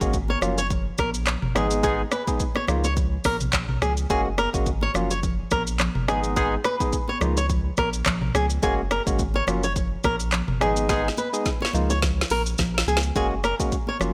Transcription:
0.01 analog synth bass G#1, tine electric piano G#3 A#3 C#4 F#4, kick, shaker
0.13 kick, shaker
0.28 nylon-string guitar C#5, high conga
0.41 analog synth bass F#1, tine electric piano F#3 A#3 C#4 F4, cross-stick, low conga, shaker
0.58 nylon-string guitar C#5, shaker
0.70 kick, low conga, shaker
0.98 analog synth bass A#1, nylon-string guitar A#4, kick, cross-stick, high conga, shaker
1.14 shaker
1.26 cross-stick, clap, high conga, low conga, shaker
1.42 analog synth bass F#1, mid tom
1.55 analog synth bass G#1, tine electric piano G#3 B3 D#4 G#4, nylon-string guitar G#4, cross-stick, high conga, low conga, shaker
1.71 shaker
1.83 tine electric piano G#3 B3 D#4 G#4, nylon-string guitar G#4, kick, shaker
2.12 nylon-string guitar B4, cross-stick, high conga, shaker
2.27 tine electric piano G#3 B3 D#4 G#4, kick, shaker
2.40 kick, shaker
2.55 nylon-string guitar C#5, cross-stick, high conga
2.68 analog synth bass C#2, tine electric piano G#3 A#3 D#4 F4, cross-stick, low conga, shaker
2.84 nylon-string guitar C#5, shaker
2.97 kick, low conga, shaker
3.24 analog synth bass A#1, nylon-string guitar A#4, kick, cross-stick, open hi-hat, high conga, shaker
3.40 mid tom, shaker
3.52 analog synth bass A#1, kick, cross-stick, clap, high conga, low conga, shaker
3.69 mid tom
3.82 analog synth bass C#2, nylon-string guitar G#4, cross-stick, high conga, low conga, shaker
3.97 shaker
4.10 analog synth bass F#1, tine electric piano G#3 A#3 C#4 F#4, nylon-string guitar G#4, kick, shaker
4.38 nylon-string guitar A#4, cross-stick, high conga, shaker
4.54 analog synth bass G#1, tine electric piano G#3 A#3 C#4 F#4, kick, shaker
4.66 kick, shaker
4.81 nylon-string guitar C#5, high conga
4.94 analog synth bass F#1, tine electric piano F#3 A#3 C#4 F4, cross-stick, low conga, shaker
5.11 nylon-string guitar C#5, shaker
5.23 kick, low conga, shaker
5.51 analog synth bass A#1, nylon-string guitar A#4, kick, cross-stick, high conga, shaker
5.67 shaker
5.79 cross-stick, clap, high conga, low conga, shaker
5.95 analog synth bass F#1, mid tom
6.08 analog synth bass G#1, tine electric piano G#3 B3 D#4 G#4, nylon-string guitar G#4, cross-stick, high conga, low conga, shaker
6.24 shaker
6.36 tine electric piano G#3 B3 D#4 G#4, nylon-string guitar G#4, kick, shaker
6.64 nylon-string guitar B4, cross-stick, high conga, shaker
6.80 tine electric piano G#3 B3 D#4 G#4, kick, shaker
6.93 kick, shaker
7.08 nylon-string guitar C#5, high conga
7.21 analog synth bass C#2, tine electric piano G#3 A#3 D#4 F4, cross-stick, low conga, shaker
7.37 nylon-string guitar C#5, shaker
7.50 kick, low conga, shaker
7.77 analog synth bass A#1, nylon-string guitar A#4, kick, cross-stick, high conga, shaker
7.93 shaker
8.05 analog synth bass A#1, kick, cross-stick, clap, high conga, low conga, shaker
8.22 mid tom
8.35 analog synth bass C#2, nylon-string guitar G#4, cross-stick, high conga, low conga, shaker
8.50 shaker
8.62 analog synth bass F#1, tine electric piano G#3 A#3 C#4 F#4, nylon-string guitar G#4, kick, shaker
8.91 nylon-string guitar A#4, cross-stick, high conga, shaker
9.07 analog synth bass G#1, tine electric piano G#3 A#3 C#4 F#4, kick, shaker
9.19 kick, shaker
9.34 nylon-string guitar C#5, high conga
9.47 analog synth bass F#1, tine electric piano F#3 A#3 C#4 F4, cross-stick, low conga, shaker
9.63 nylon-string guitar C#5, shaker
9.76 kick, low conga, shaker
10.04 analog synth bass A#1, nylon-string guitar A#4, kick, cross-stick, high conga, shaker
10.20 shaker
10.32 cross-stick, clap, high conga, low conga, shaker
10.48 analog synth bass F#1, mid tom
10.61 analog synth bass G#1, tine electric piano G#3 B3 D#4 G#4, nylon-string guitar G#4, cross-stick, high conga, low conga, shaker
10.76 shaker
10.89 tine electric piano G#3 B3 D#4 G#4, nylon-string guitar G#4, kick, snare, shaker
11.08 snare
11.17 nylon-string guitar B4, high conga, shaker
11.33 tine electric piano G#3 B3 D#4 G#4, shaker
11.46 kick, snare, shaker
11.61 nylon-string guitar C#5, high conga
11.65 snare
11.73 analog synth bass C#2, tine electric piano G#3 A#3 D#4 F4, low conga, shaker
11.90 nylon-string guitar C#5, shaker
12.02 kick, snare, low conga, shaker
12.21 snare
12.30 analog synth bass A#1, nylon-string guitar A#4, open hi-hat, high conga, shaker
12.46 shaker
12.58 analog synth bass A#1, kick, snare, high conga, low conga, shaker
12.78 snare
12.87 analog synth bass C#2, nylon-string guitar G#4, high conga, low conga, shaker
12.97 snare
13.03 shaker
13.16 analog synth bass F#1, tine electric piano G#3 A#3 C#4 F#4, nylon-string guitar G#4, kick, shaker
13.44 nylon-string guitar A#4, cross-stick, high conga, shaker
13.59 tine electric piano G#3 A#3 C#4 F#4, kick, shaker
13.72 kick, shaker
13.87 nylon-string guitar C#5, high conga
14.00 analog synth bass F#1, tine electric piano F#3 A#3 C#4 F4, cross-stick, low conga, shaker

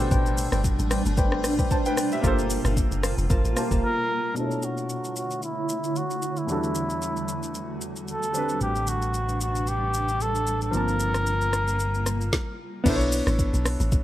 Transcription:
Already playing: grand piano B2 D4 G4 A4 C5 A5, ambient pad B2 G3 A3 D4
0.11 log drum bass A1, synth stab B4 C5 D5 G5, kick, shaker
0.26 shaker
0.37 open hi-hat, shaker
0.52 log drum bass G1, synth stab B4 C5 D5 G5, cross-stick, shaker
0.64 kick, shaker
0.79 log drum bass A1, shaker
0.91 synth stab B4 C5 D5 G5, cross-stick, open hi-hat, shaker
1.06 log drum bass G1, shaker
1.17 synth stab B4 C5 D5 G5, kick, shaker
1.32 cross-stick
1.44 log drum bass A1, cross-stick, open hi-hat, shaker
1.59 synth stab B4 C5 D5 G5, kick, shaker
1.71 grand piano C5 A5, kick, shaker
1.86 grand piano B4 G5, shaker
1.97 synth stab B4 C5 D5 G5, cross-stick, open hi-hat, shaker
2.12 grand piano G4 E5, shaker
2.22 log drum bass G1, ambient pad G3 A#3 F4, grand piano A#3 F4 G4, synth stab A#4 C5 F5 A5, kick, shaker
2.26 grand piano A4 C5
2.39 shaker
2.50 open hi-hat, shaker
2.65 log drum bass G1, synth stab A#4 C5 F5 A5, cross-stick, shaker
2.77 kick, shaker
2.92 log drum bass F#1, shaker
3.03 synth stab A#4 C5 F5 A5, cross-stick, open hi-hat, shaker
3.18 log drum bass F1, shaker
3.30 log drum bass G1, synth stab A#4 C5 F5 A5, kick, shaker
3.45 log drum bass A1, shaker
3.56 grand piano A#3 F4 G4 C5 A5, cross-stick, open hi-hat, shaker
3.71 log drum bass F1, synth stab A#4 C5 F5 A5, kick, shaker
3.85 muted trumpet A#4
4.34 grand piano B2 A3 D4, ambient pad D3 A3 E4 C#5, muted trumpet A4, shaker
4.38 grand piano E4 C5
4.46 grand piano C#5
4.51 shaker
4.62 muted trumpet F#4, shaker
4.77 shaker
4.89 shaker
5.04 shaker
5.16 muted trumpet F#4, shaker
5.31 shaker
5.42 muted trumpet E4, shaker
5.69 shaker
5.84 shaker
5.96 muted trumpet F#4, shaker
6.11 shaker
6.22 shaker
6.37 muted trumpet E4, shaker
6.46 grand piano E2 G3 D4, ambient pad E2 G3 F#4, shaker
6.51 grand piano F#4 A4
6.64 shaker
6.75 shaker
6.90 shaker
7.02 shaker
7.17 shaker
7.28 shaker
7.43 shaker
7.55 shaker
7.81 shaker
7.96 shaker
8.08 muted trumpet A4, shaker
8.23 shaker
8.32 ambient pad C3 G3 D4 B4, grand piano G3 C4 D4, shaker
8.38 grand piano B4
8.49 shaker
8.61 fingered electric bass A1, muted trumpet G4, shaker
8.76 shaker
8.87 muted trumpet F#4, shaker
9.02 shaker
9.14 shaker
9.29 shaker
9.41 muted trumpet F#4, shaker
9.55 shaker
9.67 muted trumpet G4, shaker
9.94 shaker
10.09 shaker
10.20 muted trumpet A4, shaker
10.35 shaker
10.47 shaker
10.61 muted trumpet A#4, shaker
10.71 fingered electric bass G1, ambient pad C3 G3 A#3 F4, grand piano F3 A#3 C4, shaker
10.77 grand piano A5
10.88 shaker
11.00 shaker
11.14 cross-stick, shaker
11.27 shaker
11.41 shaker
11.53 cross-stick, shaker
11.68 shaker
11.79 shaker
11.94 shaker
12.06 cross-stick, shaker
12.21 shaker
12.33 kick, snare
12.84 log drum bass B1, grand piano B3 D4 E4, kick, crash, shaker
12.88 grand piano A4 C5
12.96 grand piano C#5
13.01 shaker
13.12 open hi-hat, shaker
13.27 log drum bass A1, cross-stick, shaker
13.39 kick, shaker
13.54 log drum bass B1, shaker
13.65 cross-stick, open hi-hat, shaker
13.80 log drum bass A1, shaker
13.92 kick, shaker

